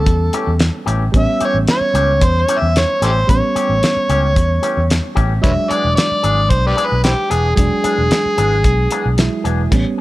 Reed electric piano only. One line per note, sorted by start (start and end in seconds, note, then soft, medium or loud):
0.00 1.09 G3 medium
0.00 1.10 B3 medium
0.00 1.11 C#4 medium
1.12 3.24 G3 medium
1.12 3.25 B3 medium
1.12 3.26 C#4 medium
3.27 5.39 G3 medium
3.27 5.39 B3 medium
3.27 5.40 C#4 medium
5.42 7.53 F#3 medium
5.42 7.54 G#3 medium
5.42 7.55 D4 medium
7.56 9.14 F#3 medium
7.56 9.15 G#3 medium
7.56 9.16 D4 medium
9.18 9.71 F#3 soft
9.18 9.72 G#3 soft
9.18 9.72 E4 medium
9.71 10.01 G3 medium
9.71 10.01 B3 medium
9.71 10.01 C#4 medium